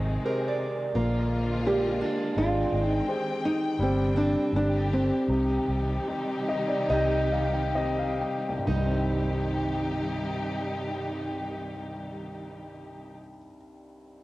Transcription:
Already playing: G#1 C3 D#3 G#3 C4 D#5
0.25 G4 G#4 A#4 C5
0.48 D5
0.95 A#1 D3 F3 G#3 A#3 F4
1.66 G#3 G4 A#4 D5
2.01 D4
2.37 G#1 D#3 G#3 C4 F4 G5
2.72 G#1
2.87 D#4
3.07 G4 G#4 C5
3.45 D#4
3.79 G1 C3 D3 G3 C4 D4
4.16 C4 D4
4.53 G1 D3 G3 D4 G4
4.93 C4
5.28 C2 C3 D#3 D#4 G4
5.68 C2
6.07 C4 D#4 G4
6.49 D#5
6.68 D5
6.90 C2 C4 D#4 G4 D#5
7.32 F5
7.53 G5
7.75 C4 D#4 G4 D#5
7.99 F5
8.21 G5
8.48 C2
8.58 G2
8.66 C2 C3 D#3 G3 D#4 G4
8.76 G3
8.85 C4

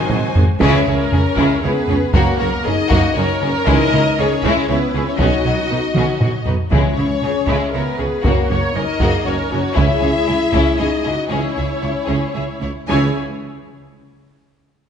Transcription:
Already playing: F#3 C4 D#4 F#4 C5 D#5 G#5
0.09 G#1 G#2 F#3, taiko low-mid
0.35 G#1 G#2 G#3, taiko low
0.60 C#2 C#3 E3 G#3 C#4 E4 G#4 C#5, taiko
0.86 C#2 C#3 E4 A#4 C#5
1.11 C#2 C#3 C#4 G#4, taiko low
1.37 C#2 C#3 G#3 E4, taiko
1.62 C#2 C#3 B3 E4 G#4 B4 C#5
1.88 C#2 C#3 C#4 G#4, taiko low
2.13 F#1 F#2 F#3 A#3 C#4 F#4 A#4, taiko
2.39 F#1 F#2 F#4 A#4 C#5
2.65 F#1 F#2 C#4 D#4 G#4 A#4 D#5
2.89 F#1 F#2 A#3 F#4, taiko
3.15 F#1 F#2 C#4 F#4 A#4 C#5
3.41 F#1 F#2 C#4 A#4
3.67 C#2 C#3 E3 G#3 C#4 D#4 E4 D#5, taiko
3.93 C#2 C#3 E4 C#5
4.17 C#2 C#3 C#4 G#4 C#5
4.43 C#2 C#3 G#3 E4, taiko
4.69 C#2 C#3 B3 E4 B4 C#5
4.94 C#2 C#3 C#4 G#4
5.05 C#4 C#5
5.18 B1 B2 F#3 C#4 D#4 F#4 D#5, taiko
5.45 B1 B2 F#4 C#5
5.70 B1 B2 D#4 B4
5.95 B1 B2 C#4 F#4, taiko mid
6.21 B1 B2 F#4 C#5, taiko low-mid
6.46 B1 B2 D#4 B4, taiko low
6.70 C#2 C#3 E3 G#3 C#4 E4 C#5, taiko
6.97 C#2 C#3 E4 C#5
7.22 C#2 C#3 C#4 G#4
7.47 C#2 C#3 G#3 E4, taiko
7.73 C#2 C#3 B3 E4 A#4 B4 C#5
7.99 C#2 C#3 C#4 G#4
8.24 F#1 F#2 C#3 A#3 C#4 F#4 A#4, taiko
8.50 F#1 F#2 F#4 C#5
8.74 F#1 F#2 C#4 D#4 A#4 D#5
9.00 F#1 F#2 A#3 F#4 G#4, taiko
9.25 F#1 F#2 C#4 F#4 A#4 C#5
9.51 F#1 F#2 C#4 F#4 A#4
9.75 C#2 C#3 C#4 E4 G#4 E5, taiko
10.02 C#2 G#4 C#5
10.27 C#2 E4 G#4
10.53 C#2 C#4 E4, taiko
10.78 C#2 D#4 G#4 C#5 D#5
11.04 C#2 E4 F#4 G#4
11.30 C#2 E3 C#4 E4 G#4 C#5
11.57 C#2 G#4 E5
11.82 C#2 E4 C#5
12.07 C#2 C#4 G#4
12.34 C#2 G#4 E5
12.61 C#2 E4 C#5
12.88 C#2 C#3 E3 C#4 E4 G#4 C#5 G#5

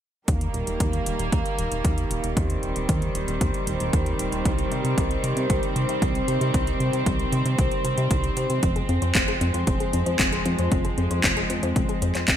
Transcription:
0.28 D#2 D#3 G3 A#3, kick, closed hi-hat
0.41 closed hi-hat
0.54 D#1, closed hi-hat
0.67 D#1, closed hi-hat
0.80 D#2, kick, closed hi-hat
0.93 closed hi-hat
1.06 D#1, closed hi-hat
1.19 D#1, closed hi-hat
1.32 D#2, kick, closed hi-hat
1.46 closed hi-hat
1.59 D#1, closed hi-hat
1.72 D#1, closed hi-hat
1.85 D#2, kick, closed hi-hat
1.98 closed hi-hat
2.11 D#1, closed hi-hat
2.24 D#1, closed hi-hat
2.37 D#2 C4, kick, closed hi-hat
2.50 closed hi-hat
2.63 D#1, closed hi-hat
2.76 D#1, closed hi-hat
2.89 D#2, kick, closed hi-hat
3.02 closed hi-hat
3.15 D#1, closed hi-hat
3.28 D#1, closed hi-hat
3.41 D#2, kick, closed hi-hat
3.54 closed hi-hat
3.67 D#1, closed hi-hat
3.80 D#1, closed hi-hat
3.93 D#2, kick, closed hi-hat
4.06 closed hi-hat
4.19 D#1, closed hi-hat
4.32 D#1, closed hi-hat
4.45 C2, kick, closed hi-hat
4.59 closed hi-hat
4.71 C3, closed hi-hat
4.84 C3, closed hi-hat
4.98 C2, kick, closed hi-hat
5.11 closed hi-hat
5.24 C3, closed hi-hat
5.37 C3, closed hi-hat
5.50 C2, kick, closed hi-hat
5.63 closed hi-hat
5.76 C3, closed hi-hat
5.89 C3, closed hi-hat
6.02 C2, kick, closed hi-hat
6.15 closed hi-hat
6.28 C3, closed hi-hat
6.41 C3, closed hi-hat
6.54 C2, kick, closed hi-hat
6.67 closed hi-hat
6.80 C3, closed hi-hat
6.93 C3, closed hi-hat
7.06 C2, kick, closed hi-hat
7.19 closed hi-hat
7.32 C3, closed hi-hat
7.45 C3, closed hi-hat
7.59 C2, kick, closed hi-hat
7.72 closed hi-hat
7.85 C3, closed hi-hat
7.98 C3, closed hi-hat
8.11 C2, kick, closed hi-hat
8.24 closed hi-hat
8.37 C3, closed hi-hat
8.50 C3, closed hi-hat
8.63 F1 F3 G#3 C4, kick, closed hi-hat
8.76 G#4, closed hi-hat
8.89 F2 C4, closed hi-hat
9.02 F2 C5, closed hi-hat
9.15 F1 C4, kick, clap, closed hi-hat
9.28 G#4, closed hi-hat
9.41 F2 C4, closed hi-hat
9.54 F2 C5, closed hi-hat
9.67 F1 C4, kick, closed hi-hat
9.80 G#4, closed hi-hat
9.93 F2 C4, closed hi-hat
10.06 F2 C5, closed hi-hat
10.19 F1 C4, kick, clap, closed hi-hat
10.33 G#4, closed hi-hat
10.46 F2 C4, closed hi-hat
10.59 F2 C5, closed hi-hat
10.72 F1 C4, kick, closed hi-hat
10.85 G#4, closed hi-hat
10.98 F2 C4, closed hi-hat
11.11 F2 C5, closed hi-hat
11.24 F1 C4, kick, clap, closed hi-hat
11.37 G#4, closed hi-hat
11.50 F2 C4, closed hi-hat
11.63 F2 C5, closed hi-hat
11.76 F1 C4, kick, closed hi-hat
11.89 G#4, closed hi-hat
12.02 F2 C4, closed hi-hat
12.15 F2 C5, clap, closed hi-hat
12.28 F1 C4, kick, clap, closed hi-hat

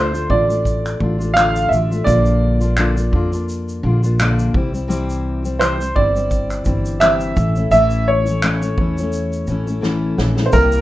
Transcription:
Already playing: D2 D3 A3 D4 F4 C5
0.12 A3 D4 F4, shaker
0.29 A1 D3 A3 D4 F4 D5, kick
0.47 A3 D4 F4, shaker
0.65 kick, shaker
0.86 finger snap, shaker
1.00 A1 D3 A3 D4 F4, kick
1.18 A3 D4 F4, shaker
1.34 D3 A3 D4 F4 F5, finger snap, shaker
1.56 shaker
1.69 A1 D3 A3 E5, shaker
1.73 D4 F4
1.90 A3 D4 F4, shaker
2.04 A#1 A#2 D3 A#3 D4 F4 D5, kick, shaker
2.26 shaker
2.60 A#3 D4 F4, shaker
2.77 A#2 D3 A#3 D4 F4, finger snap, shaker
2.96 A#3 D4 F4, shaker
3.11 F2 D3 A#3 D4, kick
3.16 F4
3.32 A#3 D4 F4, shaker
3.49 shaker
3.69 shaker
3.83 A#1 D3 A#3 D4 F4
4.03 A#3 D4 F4, shaker
4.19 A#2 D3 A#3 D4 F4, finger snap, shaker
4.39 shaker
4.54 C2 E3 G3 C4 E4, kick
4.72 G3 C4 E4, shaker
4.88 C3 E3 G3 C4 E4, shaker
5.10 shaker
5.42 G3 C4 E4, shaker
5.59 C3 E3 G3 C4 E4 C5, finger snap, shaker
5.78 G3 C4 E4, shaker
5.94 G1 E3 G3 C4 E4 D5, kick
6.14 G3 C4 E4, shaker
6.31 kick, shaker
6.50 finger snap, shaker
6.64 G1 E3 G3 C4 E4, kick, shaker
6.85 shaker
7.00 C3 E3 G3 C4 E4 E5, finger snap, shaker
7.20 shaker
7.36 A1 E3 A3 C#4 E4, kick, shaker
7.55 A3 C#4 E4, shaker
7.71 A1 A2 E3 A3 C#4 E4 E5, shaker
7.90 shaker
8.08 C#5
8.25 A3 C#4 E4, shaker
8.42 A2 E3 A3 C#4 E4, finger snap, shaker
8.61 A3 C#4 E4, shaker
8.78 E2 E3 A3 C#4 E4, kick
8.98 C#4 E4, shaker
9.02 A3
9.13 shaker
9.33 shaker
9.47 A1 E3 A3 C#4 E4, shaker
9.66 A3 C#4 E4, shaker
9.81 A2 E3 A3 C#4 E4, snare
10.18 A#1 E3 A3 C#4 E4, snare
10.35 A3 C#4 E4, snare
10.46 C5
10.52 C2 C3 G3 A#3 E4 G4 A#4, kick, tambourine, shaker
10.72 shaker

